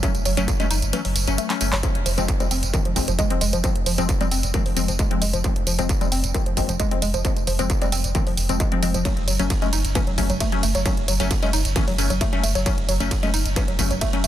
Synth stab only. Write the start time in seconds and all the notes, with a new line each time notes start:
0.03 F#3 A3 C#4
0.37 F#3 A3 C#4
0.60 F#3 A3 C#4
0.93 F#3 A3 C#4
1.28 F#3 A3 C#4
1.50 F#3 A3 C#4
1.61 F#3 A3 C#4
1.83 F3 G#3 C4
2.18 F3 G#3 C4
2.40 F3 G#3 C4
2.74 F3 G#3 C4
2.96 F3 G#3 C4
3.30 F3 G#3 C4
3.64 F3 G#3 C4
3.98 F3 G#3 C4
4.21 F3 G#3 C4
4.54 F3 G#3 C4
4.77 F3 G#3 C4
5.11 F3 G#3 C4
5.44 F3 G#3 C4
5.79 F3 G#3 C4
6.01 F3 G#3 C4
6.35 F3 G#3 C4
6.57 F3 G#3 C4
6.91 F3 G#3 C4
7.25 F3 G#3 C4
7.59 F3 G#3 C4
7.82 F3 G#3 C4
8.15 F3 G#3 C4
8.49 F3 G#3 C4
8.72 F3 G#3 C4
8.83 F3 G#3 C4
9.05 F#3 A3 C#4
9.40 F#3 A3 C#4
9.62 F#3 A3 C#4
9.95 F#3 A3 C#4
10.18 F#3 A3 C#4
10.52 F#3 A3 C#4
10.86 F#3 A3 C#4
11.20 F#3 A3 C#4
11.43 F#3 A3 C#4
11.76 F#3 A3 C#4
11.98 F#3 A3 C#4
12.33 F#3 A3 C#4
12.66 F#3 A3 C#4
13.00 F#3 A3 C#4
13.23 F#3 A3 C#4
13.56 F#3 A3 C#4
13.79 F#3 A3 C#4
14.13 F#3 A3 C#4